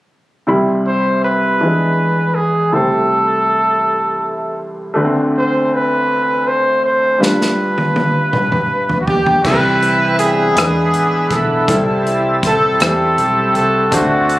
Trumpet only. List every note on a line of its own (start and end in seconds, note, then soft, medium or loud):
0.87 1.21 C5 medium
1.24 2.36 B4 medium
2.35 2.74 G#4 medium
2.73 4.59 A4 medium
5.38 5.76 C5 medium
5.74 6.49 B4 medium
6.48 6.84 C5 medium
6.84 7.23 C5 medium
7.22 9.00 B4 medium
9.01 9.07 F#4 soft
9.06 9.42 G4 medium
9.42 10.14 B4 medium
10.19 11.34 G#4 medium
11.32 12.06 A4 medium
12.47 12.80 A4 medium
12.83 13.52 A4 medium
13.57 13.96 A4 medium
13.95 14.39 F#4 medium